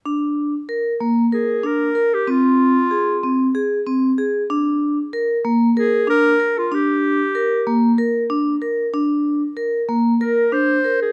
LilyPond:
<<
  \new Staff \with { instrumentName = "Clarinet" } { \time 7/8 \key bes \mixolydian \tempo 4 = 94 r2 aes'8 bes'8. g'16 | f'2 r4. | r2 aes'8 bes'8. f'16 | g'2 r4. |
r2 bes'8 c''8. aes'16 | }
  \new Staff \with { instrumentName = "Vibraphone" } { \time 7/8 \key bes \mixolydian d'4 bes'8 bes8 bes'8 d'8 bes'8 | c'4 aes'8 c'8 aes'8 c'8 aes'8 | d'4 bes'8 bes8 bes'8 d'8 bes'8 | d'4 bes'8 bes8 bes'8 d'8 bes'8 |
d'4 bes'8 bes8 bes'8 d'8 bes'8 | }
>>